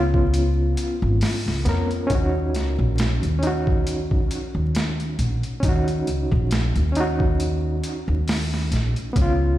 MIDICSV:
0, 0, Header, 1, 4, 480
1, 0, Start_track
1, 0, Key_signature, -6, "minor"
1, 0, Tempo, 882353
1, 1141, Time_signature, 4, 2, 24, 8
1, 5213, End_track
2, 0, Start_track
2, 0, Title_t, "Reed electric piano"
2, 0, Program_c, 0, 4
2, 0, Control_c, 0, 64, 127
2, 0, Note_on_c, 0, 59, 94
2, 0, Note_on_c, 0, 61, 82
2, 0, Note_on_c, 0, 65, 107
2, 871, Note_off_c, 0, 59, 0
2, 882, Note_off_c, 0, 61, 0
2, 894, Note_off_c, 0, 65, 0
2, 898, Note_on_c, 0, 59, 90
2, 909, Note_on_c, 0, 61, 83
2, 919, Note_on_c, 0, 70, 105
2, 1114, Note_off_c, 0, 59, 0
2, 1118, Note_off_c, 0, 61, 0
2, 1124, Note_off_c, 0, 70, 0
2, 1124, Note_on_c, 0, 61, 84
2, 1145, Note_on_c, 0, 63, 81
2, 1148, Control_c, 0, 64, 0
2, 1169, Note_on_c, 0, 66, 99
2, 1251, Control_c, 0, 64, 127
2, 1827, Note_off_c, 0, 61, 0
2, 1838, Note_off_c, 0, 63, 0
2, 1843, Note_on_c, 0, 61, 84
2, 1850, Note_off_c, 0, 66, 0
2, 1867, Note_on_c, 0, 63, 81
2, 1889, Note_on_c, 0, 66, 96
2, 3026, Note_off_c, 0, 61, 0
2, 3038, Note_off_c, 0, 63, 0
2, 3047, Note_on_c, 0, 61, 87
2, 3049, Note_off_c, 0, 66, 0
2, 3070, Note_on_c, 0, 63, 80
2, 3093, Note_on_c, 0, 66, 97
2, 3749, Note_off_c, 0, 61, 0
2, 3760, Note_off_c, 0, 63, 0
2, 3766, Note_on_c, 0, 61, 87
2, 3771, Note_off_c, 0, 66, 0
2, 3789, Note_on_c, 0, 63, 88
2, 3810, Note_on_c, 0, 66, 99
2, 4948, Note_off_c, 0, 61, 0
2, 4959, Note_off_c, 0, 63, 0
2, 4967, Note_on_c, 0, 59, 88
2, 4970, Note_off_c, 0, 66, 0
2, 4987, Control_c, 0, 64, 0
2, 4990, Note_on_c, 0, 61, 83
2, 5013, Note_on_c, 0, 65, 109
2, 5074, Control_c, 0, 64, 127
2, 5213, Note_off_c, 0, 59, 0
2, 5213, Note_off_c, 0, 61, 0
2, 5213, Note_off_c, 0, 65, 0
2, 5213, End_track
3, 0, Start_track
3, 0, Title_t, "Upright bass"
3, 0, Program_c, 1, 32
3, 0, Note_on_c, 1, 37, 93
3, 398, Note_off_c, 1, 37, 0
3, 556, Note_on_c, 1, 32, 101
3, 648, Note_off_c, 1, 32, 0
3, 796, Note_on_c, 1, 37, 76
3, 889, Note_off_c, 1, 37, 0
3, 900, Note_on_c, 1, 41, 93
3, 1115, Note_off_c, 1, 41, 0
3, 1141, Note_on_c, 1, 39, 84
3, 1384, Note_off_c, 1, 39, 0
3, 1384, Note_on_c, 1, 37, 81
3, 1500, Note_off_c, 1, 37, 0
3, 1515, Note_on_c, 1, 34, 99
3, 1723, Note_off_c, 1, 34, 0
3, 1755, Note_on_c, 1, 39, 92
3, 2320, Note_off_c, 1, 39, 0
3, 2473, Note_on_c, 1, 39, 89
3, 2799, Note_off_c, 1, 39, 0
3, 2822, Note_on_c, 1, 34, 72
3, 2939, Note_off_c, 1, 34, 0
3, 3061, Note_on_c, 1, 39, 90
3, 3301, Note_off_c, 1, 39, 0
3, 3301, Note_on_c, 1, 37, 83
3, 3419, Note_off_c, 1, 37, 0
3, 3437, Note_on_c, 1, 34, 97
3, 3644, Note_off_c, 1, 34, 0
3, 3674, Note_on_c, 1, 39, 90
3, 4240, Note_off_c, 1, 39, 0
3, 4394, Note_on_c, 1, 39, 91
3, 4720, Note_off_c, 1, 39, 0
3, 4740, Note_on_c, 1, 34, 77
3, 4858, Note_off_c, 1, 34, 0
3, 4982, Note_on_c, 1, 37, 95
3, 5213, Note_off_c, 1, 37, 0
3, 5213, End_track
4, 0, Start_track
4, 0, Title_t, "Drums"
4, 76, Note_on_c, 9, 36, 86
4, 130, Note_off_c, 9, 36, 0
4, 183, Note_on_c, 9, 42, 85
4, 237, Note_off_c, 9, 42, 0
4, 420, Note_on_c, 9, 42, 74
4, 475, Note_off_c, 9, 42, 0
4, 659, Note_on_c, 9, 46, 77
4, 668, Note_on_c, 9, 38, 102
4, 713, Note_off_c, 9, 46, 0
4, 722, Note_off_c, 9, 38, 0
4, 805, Note_on_c, 9, 38, 45
4, 859, Note_off_c, 9, 38, 0
4, 901, Note_on_c, 9, 42, 66
4, 909, Note_on_c, 9, 38, 40
4, 955, Note_off_c, 9, 42, 0
4, 964, Note_off_c, 9, 38, 0
4, 1037, Note_on_c, 9, 42, 40
4, 1092, Note_off_c, 9, 42, 0
4, 1142, Note_on_c, 9, 42, 80
4, 1143, Note_on_c, 9, 36, 102
4, 1196, Note_off_c, 9, 42, 0
4, 1197, Note_off_c, 9, 36, 0
4, 1385, Note_on_c, 9, 42, 66
4, 1393, Note_on_c, 9, 38, 43
4, 1439, Note_off_c, 9, 42, 0
4, 1448, Note_off_c, 9, 38, 0
4, 1622, Note_on_c, 9, 42, 81
4, 1631, Note_on_c, 9, 38, 112
4, 1676, Note_off_c, 9, 42, 0
4, 1685, Note_off_c, 9, 38, 0
4, 1758, Note_on_c, 9, 42, 48
4, 1812, Note_off_c, 9, 42, 0
4, 1864, Note_on_c, 9, 42, 69
4, 1918, Note_off_c, 9, 42, 0
4, 1997, Note_on_c, 9, 36, 89
4, 2051, Note_off_c, 9, 36, 0
4, 2103, Note_on_c, 9, 42, 87
4, 2158, Note_off_c, 9, 42, 0
4, 2237, Note_on_c, 9, 36, 86
4, 2291, Note_off_c, 9, 36, 0
4, 2343, Note_on_c, 9, 42, 69
4, 2398, Note_off_c, 9, 42, 0
4, 2583, Note_on_c, 9, 42, 85
4, 2592, Note_on_c, 9, 38, 105
4, 2638, Note_off_c, 9, 42, 0
4, 2646, Note_off_c, 9, 38, 0
4, 2719, Note_on_c, 9, 42, 38
4, 2774, Note_off_c, 9, 42, 0
4, 2822, Note_on_c, 9, 42, 66
4, 2877, Note_off_c, 9, 42, 0
4, 2956, Note_on_c, 9, 42, 43
4, 3010, Note_off_c, 9, 42, 0
4, 3062, Note_on_c, 9, 36, 101
4, 3062, Note_on_c, 9, 42, 81
4, 3116, Note_off_c, 9, 36, 0
4, 3116, Note_off_c, 9, 42, 0
4, 3197, Note_on_c, 9, 42, 42
4, 3252, Note_off_c, 9, 42, 0
4, 3303, Note_on_c, 9, 42, 66
4, 3358, Note_off_c, 9, 42, 0
4, 3436, Note_on_c, 9, 36, 96
4, 3490, Note_off_c, 9, 36, 0
4, 3541, Note_on_c, 9, 42, 83
4, 3550, Note_on_c, 9, 38, 116
4, 3595, Note_off_c, 9, 42, 0
4, 3604, Note_off_c, 9, 38, 0
4, 3676, Note_on_c, 9, 42, 44
4, 3730, Note_off_c, 9, 42, 0
4, 3783, Note_on_c, 9, 42, 67
4, 3837, Note_off_c, 9, 42, 0
4, 3917, Note_on_c, 9, 36, 86
4, 3971, Note_off_c, 9, 36, 0
4, 4024, Note_on_c, 9, 42, 82
4, 4079, Note_off_c, 9, 42, 0
4, 4262, Note_on_c, 9, 42, 72
4, 4317, Note_off_c, 9, 42, 0
4, 4502, Note_on_c, 9, 46, 73
4, 4511, Note_on_c, 9, 38, 114
4, 4557, Note_off_c, 9, 46, 0
4, 4565, Note_off_c, 9, 38, 0
4, 4645, Note_on_c, 9, 38, 45
4, 4699, Note_off_c, 9, 38, 0
4, 4743, Note_on_c, 9, 42, 71
4, 4751, Note_on_c, 9, 38, 39
4, 4797, Note_off_c, 9, 42, 0
4, 4806, Note_off_c, 9, 38, 0
4, 4876, Note_on_c, 9, 42, 40
4, 4930, Note_off_c, 9, 42, 0
4, 4982, Note_on_c, 9, 36, 104
4, 4982, Note_on_c, 9, 42, 84
4, 5037, Note_off_c, 9, 36, 0
4, 5037, Note_off_c, 9, 42, 0
4, 5213, End_track
0, 0, End_of_file